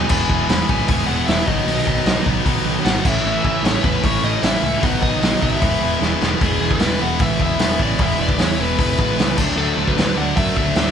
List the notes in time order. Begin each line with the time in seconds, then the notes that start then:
Already playing: B3 G#5
0.09 E1 E2 B2 E3 G#3 B3 E4, kick, crash
0.29 E1 E3 G#3 B3 E4, kick
0.49 E1 E3 G#3 B3 E4 B5, snare, open hi-hat
0.69 B1 E3 G#3 B3 E4 G#5, kick
0.88 E1 E3 G#3 B3 E4 G#5, kick, open hi-hat
1.06 E1 B2 E3 G#3 B3 E4 F#5
1.11 E2
1.26 E1 E2 B2 E3 G#3 B3 E4 E5, snare, open hi-hat
1.46 B1 B2 D#3 F#3 B3 D#4 F#4 D#5, kick
1.66 B1 B2 D#3 F#3 B3 D#4 F#4, open hi-hat
1.86 B1 B2 D#3 F#3 B3 D#4 F#4, kick
2.05 B1 B2 D#3 F#3 B3 D#4 F#4, snare, open hi-hat
2.25 B1 B2 D#3 F#3 B3 D#4 F#4, kick
2.45 B1 B2 D#3 F#3 B3 D#4 F#4, kick, open hi-hat
2.64 B1 B2 D#3 F#3 B3 D#4 F#4
2.83 G#1 B2 D#3 F#3 B3 D#4 F#4 F#5, snare, open hi-hat
3.04 A1 A2 E3 A3 C#4 E4 E5, kick, crash
3.24 A1 A2 E3 A3 C#4 E4
3.44 A1 A2 E3 A3 C#4 E4, kick
3.63 A1 A2 E3 A3 C#4 E4 C#5, snare, open hi-hat
3.82 E2 A2 E3 A3 C#4 E4 B4, kick
4.03 A1 A2 E3 A3 C#4 E4 C#5, kick, open hi-hat
4.23 A1 A2 E3 A3 C#4 E4 D#5
4.42 A1 A2 E3 A3 C#4 E4 E5, snare, open hi-hat
4.63 C#2 A2 E3 A3 C#4 E4 E5
4.81 B1 B2 D#3 F#3 B3 D#4 F#5, kick, open hi-hat
5.01 B1 B2 D#3 F#3 B3 D#4 D#5, kick
5.22 B1 B2 D#3 F#3 B3 D#4, snare, open hi-hat
5.41 B1 B2 D#3 F#3 B3 D#4 E5, kick
5.60 E1 E2 B2 E3 G#3 B3 E4, kick, open hi-hat
5.81 E1 E3 G#3 B3 E4
6.02 E1 E3 G#3 B3 E4, snare
6.21 E1 E3 G#3 B3 E4, snare
6.40 E1 E2 B2 E3 G#3 B3 E4, kick, open hi-hat
6.45 G#4
6.61 E1 E3 G#3 B3 E4
6.71 B4, kick
6.79 E1 E3 G#3 B3 E4, snare, open hi-hat
7.00 E1 E3 G#3 B3 E4 F#5
7.19 A1 E3 G#3 B3 E4 E5, kick, open hi-hat
7.39 E1 E3 G#3 B3 E4 E5, kick
7.59 E1 E3 G#3 B3 E4, snare, open hi-hat
7.79 A1 E2 B2 E3 G#3 B3 E4 D5, kick
7.98 E1 E2 B2 E3 G#3 B3 E4, kick, open hi-hat
8.02 E5
8.18 E1 E3 G#3 B3 E4 D5
8.29 kick
8.38 E2 E3 G#3 B3 E4 C#5, snare, open hi-hat
8.58 E1 E3 G#3 B3 E4 B4
8.78 E1 E3 G#3 B3 E4 B4, kick, open hi-hat
8.97 A1 E3 G#3 B3 E4, kick
9.17 C#2 E3 G#3 B3 E4, snare, open hi-hat
9.37 D2 D3 F#3 A3 D4, kick, crash
9.56 D2 D3 F#3 A3 D4 A4
9.77 D2 D3 F#3 A3 D4
9.88 B4, kick
9.96 D2 D3 F#3 A3 D4, snare, open hi-hat
10.16 D2 D3 F#3 A3 D4 F#5
10.35 F#2 D3 F#3 A3 D4 E5, kick, open hi-hat
10.56 D2 D3 F#3 A3 D4 E5, kick
10.75 D2 D3 F#3 A3 D4 E5, snare, open hi-hat